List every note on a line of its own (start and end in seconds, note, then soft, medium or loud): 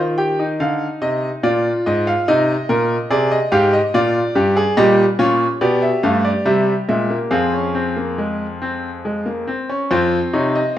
0.00 0.57 D#3 medium
0.00 0.17 F4 medium
0.18 0.38 G4 medium
0.18 0.44 G5 medium
0.39 1.41 D#4 medium
0.60 0.86 D3 medium
0.60 0.86 F5 medium
1.02 1.28 C3 medium
1.02 1.28 D#5 medium
1.43 1.69 A#2 medium
1.43 2.25 F4 medium
1.43 1.70 D5 medium
1.86 2.12 G#2 medium
1.86 2.06 D#5 medium
2.07 2.27 F5 medium
2.28 2.54 C3 medium
2.28 2.54 D#4 medium
2.28 3.08 D#5 medium
2.69 2.95 A#2 medium
2.69 2.95 A#4 medium
3.10 3.36 C3 medium
3.10 3.36 G#4 medium
3.10 3.31 D5 medium
3.31 3.51 D#5 medium
3.52 3.78 G#2 medium
3.52 3.78 G4 medium
3.52 3.72 F5 medium
3.73 3.93 D#5 medium
3.94 4.20 A#2 medium
3.94 4.20 F4 medium
3.94 4.75 D5 medium
4.35 4.61 G2 medium
4.35 4.56 G4 medium
4.56 4.77 G#4 medium
4.77 5.03 A#2 medium
4.77 5.03 G3 medium
4.77 5.03 G4 medium
4.77 5.03 D#5 medium
5.19 5.45 A#2 medium
5.19 5.45 C#4 medium
5.19 5.45 F4 medium
5.19 5.45 C#5 medium
5.61 5.87 B2 medium
5.61 5.87 B3 medium
5.61 7.28 G4 medium
5.61 5.81 D5 medium
5.82 6.03 E5 medium
6.03 6.30 G2 medium
6.03 6.30 A3 medium
6.03 6.24 F5 medium
6.25 6.45 D5 medium
6.45 6.72 C3 medium
6.45 6.72 G3 medium
6.45 6.72 E5 medium
6.89 7.15 A#2 medium
6.89 7.09 G#3 medium
6.89 7.15 E5 medium
7.10 7.31 A#3 medium
7.31 9.44 F2 medium
7.31 7.52 C4 medium
7.31 9.44 G#4 medium
7.31 9.44 F5 medium
7.54 7.75 C#4 medium
7.75 7.96 C4 medium
7.97 8.18 A#3 medium
8.18 8.45 G#3 medium
8.62 8.88 C4 medium
9.05 9.26 G#3 medium
9.26 9.47 A#3 medium
9.47 9.69 C4 medium
9.69 9.90 C#4 medium
9.91 10.17 F2 medium
9.91 10.73 C4 medium
9.91 10.17 F4 medium
9.91 10.17 C5 medium
10.33 10.60 C3 medium
10.33 10.60 D#4 medium
10.33 10.54 C#5 medium
10.55 10.76 D#5 medium